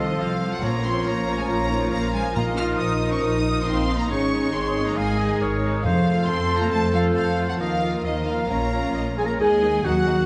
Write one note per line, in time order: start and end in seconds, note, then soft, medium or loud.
0.00 0.15 C2 soft
0.00 0.20 D#3 soft
0.00 0.40 F3 soft
0.00 2.32 F3 soft
0.00 0.59 C4 soft
0.00 0.20 F4 soft
0.00 0.40 F4 soft
0.00 0.59 A4 soft
0.00 0.60 C5 medium
0.00 0.20 D#5 medium
0.00 0.23 F5 soft
0.18 0.58 C2 soft
0.18 0.51 F3 medium
0.18 1.47 F4 soft
0.18 0.63 C5 soft
0.18 0.50 F5 medium
0.18 0.53 F5 medium
0.42 0.62 F3 soft
0.42 0.62 F4 soft
0.51 0.63 F#3 soft
0.51 0.62 F#5 soft
0.51 0.63 F#5 medium
0.62 1.01 A#1 soft
0.62 1.24 A#2 medium
0.62 0.83 F3 soft
0.62 0.84 A#3 medium
0.62 2.32 C#4 medium
0.62 0.83 F4 soft
0.62 3.93 A#4 medium
0.62 1.90 C#5 medium
0.62 2.05 C#5 soft
0.62 0.84 A#5 medium
0.62 0.85 A#5 medium
0.84 1.26 F3 soft
0.84 1.06 C4 medium
0.84 1.26 F4 soft
0.84 1.06 C6 medium
1.06 1.44 A#1 soft
1.06 1.38 A#3 medium
1.06 1.38 A#5 medium
1.27 1.70 F3 soft
1.27 1.70 F4 soft
1.38 1.43 G#3 soft
1.38 1.49 G#5 soft
1.38 1.50 G#5 medium
1.48 1.87 A#1 soft
1.48 1.91 A#3 medium
1.48 1.72 F4 medium
1.48 1.91 A#5 medium
1.70 2.13 F3 soft
1.70 1.93 D#4 medium
1.70 2.13 F4 soft
1.92 2.31 A#1 medium
1.92 2.14 A#3 medium
1.92 2.35 F4 medium
1.92 2.36 F5 medium
1.92 2.14 A#5 medium
1.92 1.99 A#5 medium
2.13 2.35 F3 soft
2.13 2.22 G#3 medium
2.13 2.35 F4 soft
2.13 2.35 G#5 medium
2.35 2.74 A#1 medium
2.35 2.97 A#2 medium
2.35 3.93 F3 medium
2.35 2.57 A#3 medium
2.35 5.80 D#4 medium
2.35 3.36 F4 medium
2.35 2.78 D#5 medium
2.35 2.76 F5 medium
2.35 2.57 A#5 medium
2.35 2.43 A#5 medium
2.57 3.00 F3 soft
2.57 3.00 D#4 soft
2.57 2.79 F4 medium
2.57 2.65 F6 medium
2.57 2.79 F6 medium
2.78 3.17 A#1 soft
2.78 3.12 D#4 medium
2.78 3.21 C5 medium
2.78 3.64 D#5 soft
2.78 3.11 D#6 medium
3.01 3.43 F3 soft
3.01 3.43 D#4 soft
3.11 3.22 C#4 medium
3.11 3.16 C#6 medium
3.11 3.22 C#6 medium
3.21 3.61 A#1 medium
3.21 3.66 D#4 medium
3.21 3.66 A#4 medium
3.21 3.64 D#6 medium
3.21 3.66 D#6 medium
3.44 3.86 F3 soft
3.44 3.86 D#4 soft
3.66 4.04 A#1 medium
3.66 3.98 C4 medium
3.66 4.11 D#4 medium
3.66 4.09 D#5 soft
3.66 4.10 F5 medium
3.66 3.99 C6 medium
3.66 3.98 C6 medium
3.88 4.09 F3 soft
3.88 4.08 D#4 soft
3.98 4.09 A#3 soft
3.98 4.09 A#5 soft
3.98 4.10 A#5 medium
4.09 4.48 G#1 medium
4.09 5.80 D#3 medium
4.09 4.30 G#3 soft
4.09 4.53 C#4 medium
4.09 4.30 D#4 soft
4.09 5.80 G#4 medium
4.09 4.52 G#4 medium
4.09 4.98 C#5 medium
4.09 4.97 C#5 medium
4.09 4.53 C#6 medium
4.31 4.73 G#3 soft
4.31 4.73 D#4 soft
4.53 4.92 G#1 medium
4.53 4.85 C4 medium
4.53 5.39 G#4 medium
4.53 4.85 C6 medium
4.53 4.87 C6 medium
4.74 5.17 G#3 soft
4.74 5.17 D#4 soft
4.85 4.97 A#3 medium
4.85 4.96 A#5 medium
4.85 4.97 A#5 medium
4.96 5.35 G#1 medium
4.96 5.40 G#3 medium
4.96 5.40 D#5 medium
4.96 5.20 F5 medium
4.96 5.39 G#5 medium
4.96 5.40 G#5 medium
5.19 5.61 G#3 soft
5.19 5.61 D#4 soft
5.19 5.44 D#5 medium
5.41 5.79 G#1 medium
5.41 5.86 A#4 medium
5.41 5.83 C#5 medium
5.41 5.85 C#5 medium
5.62 5.84 G#3 soft
5.62 5.84 D#4 soft
5.84 6.23 F2 medium
5.84 6.46 F2 medium
5.84 6.25 F3 medium
5.84 9.15 F3 medium
5.84 7.56 C4 medium
5.84 6.28 A4 medium
5.84 7.56 A4 medium
5.84 6.06 C5 medium
5.84 6.28 C5 medium
5.84 6.25 F5 medium
6.05 6.48 A3 soft
6.05 6.48 F4 soft
6.05 7.14 C5 medium
6.27 6.67 F2 medium
6.27 6.60 C4 medium
6.27 6.71 A4 medium
6.27 7.57 A4 medium
6.27 6.60 C6 medium
6.49 6.92 A3 soft
6.49 6.92 F4 soft
6.60 6.65 A#3 medium
6.60 6.72 A#5 medium
6.71 7.11 F2 medium
6.71 6.93 A3 medium
6.71 7.15 C5 medium
6.71 6.93 A5 medium
6.93 7.14 F3 medium
6.93 7.36 A3 soft
6.93 7.36 F4 soft
6.93 7.15 F5 medium
6.93 7.03 F5 medium
7.15 7.54 F2 soft
7.15 7.48 F3 medium
7.15 7.59 A4 medium
7.15 7.62 C5 soft
7.15 7.48 F5 medium
7.37 7.59 A3 soft
7.37 7.57 F4 soft
7.48 7.59 F#3 soft
7.48 7.59 F#5 medium
7.48 7.54 F#5 medium
7.59 7.99 D#2 soft
7.59 8.03 F3 medium
7.59 7.80 A#3 soft
7.59 8.46 D#4 soft
7.59 7.80 F4 soft
7.59 8.04 A#4 medium
7.59 7.82 A#4 soft
7.59 9.15 A#4 medium
7.59 8.05 D#5 soft
7.59 8.03 F5 medium
7.59 8.04 F5 medium
7.81 8.25 A#3 soft
7.81 8.25 F4 soft
7.81 8.52 A#4 soft
8.04 8.45 D#2 soft
8.04 8.27 D#3 medium
8.04 8.49 C5 medium
8.04 8.10 D#5 medium
8.04 8.27 D#5 medium
8.04 8.49 F5 soft
8.26 8.50 F3 soft
8.26 8.49 A#3 soft
8.26 8.48 F4 soft
8.26 8.49 F5 medium
8.26 8.51 F5 medium
8.49 8.90 A#1 soft
8.49 9.18 A#3 medium
8.49 8.71 C#4 soft
8.49 9.14 C#4 soft
8.49 8.71 F4 soft
8.49 9.17 C#5 soft
8.49 8.91 C#5 soft
8.49 9.01 F5 soft
8.49 8.87 A#5 medium
8.49 9.18 A#5 medium
8.73 9.17 C#4 soft
8.73 9.16 F4 soft
8.95 9.35 A#1 soft
8.95 9.03 D#5 medium
9.17 9.25 G#3 medium
9.17 9.40 C#4 soft
9.17 9.40 F4 soft
9.17 9.21 G#4 soft
9.17 9.25 G#4 medium
9.17 9.25 G#4 soft
9.17 9.40 C#5 soft
9.17 9.27 G#5 medium
9.17 9.21 G#5 medium
9.17 9.25 G#5 medium
9.25 9.40 A#3 soft
9.25 9.39 A#4 soft
9.25 9.41 A#4 soft
9.25 9.41 A#4 medium
9.25 9.31 A#5 soft
9.25 9.40 A#5 soft
9.25 9.32 A#5 soft
9.39 9.79 D#2 medium
9.39 10.26 D#3 medium
9.39 9.83 G#3 medium
9.39 9.48 A#3 medium
9.39 10.26 A#3 medium
9.39 9.48 D#4 medium
9.39 9.83 G#4 medium
9.39 9.84 G#4 medium
9.39 9.82 D#5 medium
9.39 9.84 G#5 medium
9.39 9.86 G#5 medium
9.39 9.84 G#5 medium
9.62 9.70 A#3 soft
9.62 9.70 D#4 soft
9.83 10.23 D#2 medium
9.83 10.26 F#3 medium
9.83 9.93 A#3 medium
9.83 9.93 D#4 medium
9.83 10.26 F#4 medium
9.83 10.26 F#5 medium
10.07 10.15 A#3 medium
10.07 10.15 D#4 soft